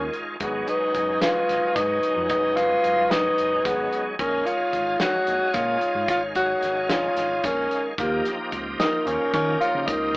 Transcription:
Already playing: D#3 G#3 C#4 F4 A#4
0.13 closed hi-hat
0.40 G#1 D#3 F#3 G#3 B3 C#4 G#4, kick, closed hi-hat
0.68 D#4 B4, closed hi-hat
0.95 F#1, kick, closed hi-hat
1.22 F4 B4, snare, closed hi-hat
1.49 G#1, snare, closed hi-hat
1.76 G#2 D#4 B4, kick, snare, closed hi-hat
2.03 closed hi-hat
2.16 F2
2.29 F#1 D#4 B4, kick, closed hi-hat
2.57 F4 B4, kick, snare, closed hi-hat
2.83 F#1, closed hi-hat
3.11 D#4 B4, snare, closed hi-hat
3.38 F#1, closed hi-hat
3.65 G#1 B3 G#4, kick, snare, closed hi-hat
3.92 closed hi-hat
4.19 A#1 D#3 G#3 C#4 A#4 F5, kick, closed hi-hat
4.46 F4 C#5, closed hi-hat
4.73 G#1, kick, closed hi-hat
5.00 F#4 C#5, snare, closed hi-hat
5.27 A#1, closed hi-hat
5.54 A#2 F4 C#5, kick, snare, closed hi-hat
5.81 closed hi-hat
5.95 G#2
6.08 G#1 F4 C#5, kick, closed hi-hat
6.35 F#4 C#5, kick, closed hi-hat
6.62 G#1, snare, closed hi-hat
6.90 F4 C#5, snare, closed hi-hat
7.16 G#1, snare, closed hi-hat
7.44 A#1 C#4 A#4, kick, snare, closed hi-hat
7.71 closed hi-hat
7.98 D#2 F3 A#3 D#4 G4, kick, closed hi-hat
8.25 snare, closed hi-hat
8.52 C#2, kick, closed hi-hat
8.79 D#4 A#4, snare, closed hi-hat
9.06 D#2 C#4 A#4, closed hi-hat
9.33 D#3 C#4 A#4, kick, closed hi-hat
9.60 F4 C#5, closed hi-hat
9.75 C#3
9.87 C#2 D#4 A#4, kick, closed hi-hat

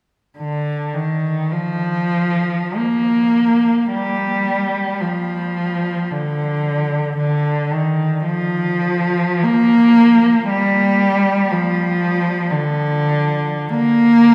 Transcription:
0.38 D3
0.94 D#3
1.51 F3
2.77 A#3
3.92 G3
5.00 F3
6.12 D3
7.17 D3
7.72 D#3
8.25 F3
9.43 A#3
10.49 G3
11.50 F3
12.51 D3
13.69 A#3

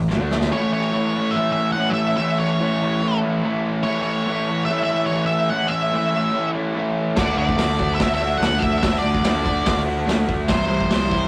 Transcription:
0.08 G1 G2 D3, snare
0.19 D2 D3 A3 D4
0.31 snare
0.41 snare
0.51 A2 E3 A3 C#4 E4 C#5
0.73 C#5
0.91 A2 E3 A3 C#4 E4
1.13 A3 C#4 E4
1.31 E5
1.35 E3 A3 C#4 E4
1.52 E4 E5
1.58 A3 C#4
1.72 E3 A3 F#5
1.77 C#4 E4
1.90 C#5 E5
2.17 A2 E3 A3 C#4 E5
2.21 E4
2.40 C#5
2.60 A2 E3 A3 C#4 E4
2.82 A3 C#4 E4
3.01 E3 A3 C#4 E4
3.21 A3 C#4 E4
3.43 E3 A3 C#4 E4
3.83 A2 E3 A3 C#4 E4 C#5
4.03 C#5
4.27 A2 E3 A3 C#4 E4
4.48 A3 C#4 E4
4.65 E3 E5
4.70 A3 C#4 E4
4.84 E5
4.89 A3 C#4 E4
5.06 E3 C#5
5.11 A3 C#4 E4
5.26 E5
5.50 A2 E3 A3 C#4 E4 F#5
5.68 E5
5.92 A2 E3 A3 C#4 E4
6.12 A3 C#4 E4
6.32 E3 A3 C#4 E4
6.52 A3 C#4 E4
6.74 E3 A3 C#4 E4
7.15 D2 D3 A3 D4 F#4 D5, kick, snare, crash
7.37 D2 D5
7.49 kick
7.56 D2 D3 A3 D4 F#4, snare, open hi-hat
7.77 A3 D4 F#4, kick
7.95 D3 E5
8.00 D2 A3 D4 F#4, kick, snare, open hi-hat
8.15 E5
8.20 A3 D4 F#4
8.38 D2 D3 F#5
8.42 A3 D4 F#4, snare, open hi-hat
8.59 D2 E5, kick
8.78 D3 E5
8.83 D2 A3 D4 F#4, kick, snare, open hi-hat
8.98 D5
9.04 D2
9.15 kick
9.23 D2 D3 A3 D4 F#4, snare, open hi-hat
9.44 A3 D4 F#4, kick
9.65 D2 D3 A3 D4 F#4, kick, snare, open hi-hat
9.86 A3 D4 F#4
10.06 D2 D3 A3 D4 F#4, snare, open hi-hat
10.28 D2, kick
10.48 C2 C3 E3 G3 C4 E4 C5, kick, snare, open hi-hat
10.69 C2 C5
10.81 kick
10.89 C2 C3 E3 G3 C4, snare, open hi-hat
10.93 E4
11.11 G3 C4 E4, kick

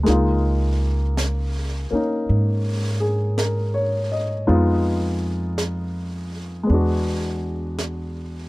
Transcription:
0.03 C#2 G#3 A#3 D#4, brush sweep, snare
0.09 F4
1.17 brush sweep, snare, hi-hat pedal
1.91 A#3 C#4 D#4, muted upright bass stroke
2.28 G#2, brush sweep
3.00 G#4
3.38 A#4, brush sweep, snare, hi-hat pedal
3.74 C#5
4.12 D#5
4.47 F2 G#3 B3 D#4 F4, brush sweep
5.58 brush sweep, snare, hi-hat pedal
6.63 G#3 B3
6.69 E2 D4, brush sweep
6.74 F#4
7.78 brush sweep, snare, hi-hat pedal

